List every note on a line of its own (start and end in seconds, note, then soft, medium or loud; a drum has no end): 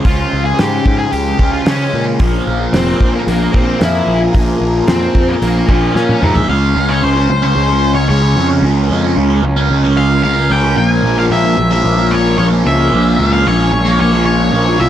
0.00 6.46 C#3 medium
0.00 6.46 F3 medium
0.00 2.17 C5 medium
0.04 0.24 C#2 medium
0.04 1.37 C#3 medium
0.04 1.40 G#3 medium
0.04 1.38 C#4 medium
0.04 0.45 F4 medium
0.04 2.18 G4 medium
0.04 kick loud
0.04 open hi-hat soft
0.33 0.52 C#2 medium
0.45 0.59 G#4 medium
0.59 0.79 G#2 medium
0.59 0.98 G4 medium
0.59 snare loud
0.59 open hi-hat soft
0.86 1.05 G#2 medium
0.86 kick medium
0.99 1.12 G#4 medium
1.12 1.32 C#2 medium
1.12 1.52 G4 medium
1.12 open hi-hat soft
1.38 1.59 C#2 medium
1.38 1.65 C#3 medium
1.38 1.68 G#3 medium
1.38 1.70 C#4 medium
1.38 kick medium
1.53 1.67 F4 medium
1.66 1.85 C#3 medium
1.66 2.19 C#3 medium
1.66 2.21 G#3 medium
1.66 2.04 C#4 medium
1.66 snare loud
1.66 open hi-hat medium
1.70 2.23 C#4 medium
1.94 2.13 A#2 medium
2.19 2.39 A#1 medium
2.19 3.53 A#2 medium
2.19 3.54 F3 medium
2.19 6.45 A#3 medium
2.19 6.45 G#4 medium
2.19 6.45 A#4 medium
2.19 kick loud
2.19 open hi-hat medium
2.23 3.52 A#3 loud
2.47 2.66 A#1 medium
2.73 2.93 F1 medium
2.73 3.15 C4 medium
2.73 snare loud
2.73 open hi-hat medium
3.01 3.20 A#1 medium
3.01 kick medium
3.15 3.20 A#3 medium
3.27 3.46 A#1 medium
3.27 3.55 A#3 medium
3.27 open hi-hat soft
3.53 3.73 A#1 medium
3.53 3.79 A#2 medium
3.53 3.81 F3 medium
3.53 3.79 A#3 medium
3.53 3.83 C4 medium
3.53 kick medium
3.80 4.00 F2 medium
3.80 4.32 A#2 medium
3.80 4.34 F3 medium
3.80 4.35 A#3 medium
3.80 4.20 E4 medium
3.80 snare loud
3.80 open hi-hat medium
4.07 4.26 A#1 medium
4.33 4.54 A#1 medium
4.33 5.67 A#2 medium
4.33 5.67 F3 medium
4.33 5.67 A#3 medium
4.33 kick loud
4.33 open hi-hat soft
4.61 4.80 A#1 medium
4.88 5.07 F2 medium
4.88 5.30 C4 medium
4.88 snare loud
4.88 open hi-hat soft
5.15 5.34 F2 medium
5.15 kick medium
5.29 5.34 A#3 medium
5.42 5.61 A#1 medium
5.42 5.70 A#3 medium
5.42 open hi-hat soft
5.68 5.88 A#1 medium
5.68 5.93 A#2 medium
5.68 5.95 F3 medium
5.68 5.94 A#3 medium
5.68 5.95 C4 medium
5.68 6.24 C#5 medium
5.68 kick medium
5.94 6.47 A#2 medium
5.94 6.14 A#2 medium
5.94 6.48 F3 medium
5.94 6.49 A#3 medium
5.94 6.33 C#4 medium
5.94 snare medium
6.09 high tom medium
6.22 6.41 G#2 medium
6.22 6.49 E5 medium
6.22 mid tom medium
6.36 floor tom medium
6.48 6.74 C#2 loud
6.48 6.75 C#3 medium
6.48 10.74 G#3 medium
6.48 6.77 G#3 loud
6.48 10.74 C#4 medium
6.48 6.78 C#4 loud
6.48 14.89 F4 medium
6.48 6.91 F5 loud
6.48 8.61 C6 medium
6.76 7.01 C#2 medium
6.76 7.01 C#3 medium
6.76 6.92 G#3 medium
6.76 6.89 C#4 medium
6.89 7.03 G#3 medium
6.89 7.05 C#4 medium
6.89 7.03 C#5 medium
7.02 7.28 C#2 medium
7.02 7.30 C#3 medium
7.02 7.19 G#3 medium
7.02 7.15 C#4 loud
7.02 7.43 C5 medium
7.16 7.30 G#3 medium
7.16 7.31 C#4 medium
7.30 7.55 C#2 medium
7.30 muted distorted electric guitar stroke soft
7.42 7.72 G#3 medium
7.42 7.68 C#4 medium
7.42 7.94 C5 medium
7.56 8.06 C#2 medium
7.69 8.10 G#3 medium
7.69 8.12 C#4 medium
7.95 8.08 C#5 medium
8.09 8.35 C#2 loud
8.09 8.35 C#3 medium
8.09 8.25 G#3 medium
8.09 8.22 C#4 loud
8.09 8.47 C#5 medium
8.22 8.38 G#3 medium
8.22 8.39 C#4 medium
8.36 8.62 F2 medium
8.36 8.62 C#3 medium
8.36 8.53 G#3 medium
8.36 8.49 C#4 medium
8.50 8.64 G#3 medium
8.50 8.66 C#4 medium
8.62 8.88 C#2 loud
8.62 8.88 C#3 medium
8.62 8.91 G#3 loud
8.62 8.92 C#4 medium
8.62 12.88 A#4 medium
8.89 9.15 F2 medium
8.89 9.15 C#3 medium
8.89 9.06 G#3 medium
8.89 9.03 C#4 medium
9.03 9.18 G#3 medium
9.03 9.19 C#4 medium
9.16 9.42 C#2 medium
9.16 9.42 C#3 medium
9.16 9.33 G#3 loud
9.16 9.29 C#4 loud
9.30 9.44 G#3 medium
9.30 9.44 C#4 medium
9.43 9.68 C#2 medium
9.43 muted distorted electric guitar stroke medium
9.56 9.87 G#3 medium
9.56 9.83 C#4 medium
9.70 10.21 C#2 loud
9.84 10.25 G#3 medium
9.84 10.26 C#4 medium
9.97 10.22 F5 medium
10.23 10.49 C#2 medium
10.23 10.49 C#3 medium
10.23 10.40 G#3 loud
10.23 10.36 C#4 loud
10.23 10.51 F5 loud
10.37 10.52 G#3 medium
10.37 10.53 C#4 medium
10.50 10.76 C#2 medium
10.50 10.76 C#3 medium
10.50 10.66 G#3 medium
10.50 10.63 C#4 medium
10.50 10.76 G5 loud
10.64 10.78 G#3 medium
10.64 10.80 C#4 medium
10.76 11.03 A#1 medium
10.76 11.03 A#2 medium
10.76 11.06 F3 loud
10.76 14.89 G#3 medium
10.76 11.07 A#3 loud
10.76 14.89 C#4 medium
10.76 11.15 G#5 medium
11.04 11.29 A#1 medium
11.04 11.30 A#2 medium
11.04 11.20 F3 medium
11.04 11.17 A#3 medium
11.17 11.32 F3 medium
11.17 11.33 A#3 medium
11.17 11.24 F5 medium
11.30 11.56 A#1 medium
11.30 11.57 A#2 medium
11.30 11.46 F3 medium
11.30 11.43 A#3 loud
11.30 11.69 E5 medium
11.44 11.58 F3 medium
11.44 11.58 A#3 medium
11.58 11.83 A#1 medium
11.58 muted distorted electric guitar stroke soft
11.71 12.01 F3 medium
11.71 11.97 A#3 medium
11.71 12.13 E5 loud
11.85 12.35 A#1 medium
11.98 12.39 F3 medium
11.98 12.40 A#3 medium
12.12 12.37 C#5 medium
12.38 12.64 A#1 loud
12.38 12.63 A#2 loud
12.38 12.53 F3 loud
12.38 12.50 A#3 loud
12.38 12.45 C#5 medium
12.51 12.65 F3 medium
12.51 12.66 A#3 medium
12.64 12.91 C#2 medium
12.64 12.90 A#2 medium
12.64 12.81 F3 medium
12.64 12.76 A#3 medium
12.64 13.32 E5 medium
12.77 12.92 F3 medium
12.77 12.93 A#3 medium
12.91 13.17 A#1 medium
12.91 13.16 A#2 loud
12.91 13.19 F3 medium
12.91 13.19 A#3 loud
12.91 14.89 G#4 medium
13.17 13.44 C#2 medium
13.17 13.43 A#2 medium
13.17 13.34 F3 medium
13.17 13.30 A#3 medium
13.31 13.45 F3 medium
13.31 13.46 A#3 medium
13.31 13.46 F5 medium
13.44 13.71 A#1 medium
13.44 13.71 A#2 loud
13.44 13.61 F3 loud
13.44 13.57 A#3 medium
13.44 13.99 C#5 medium
13.58 13.72 F3 medium
13.58 13.72 A#3 medium
13.72 13.98 A#1 medium
13.72 muted distorted electric guitar stroke soft
13.85 14.15 F3 medium
13.85 14.11 A#3 medium
14.00 14.50 A#1 loud
14.00 14.24 C#5 medium
14.12 14.53 F3 medium
14.12 14.54 A#3 medium
14.26 14.81 C#5 medium
14.52 14.78 A#1 medium
14.52 14.77 A#2 medium
14.52 14.68 F3 loud
14.52 14.64 A#3 loud
14.66 14.80 F3 medium
14.66 14.81 A#3 medium
14.78 14.89 C2 medium
14.78 14.89 A#2 medium
14.78 14.89 F3 medium
14.78 14.89 A#3 medium
14.78 14.89 E5 medium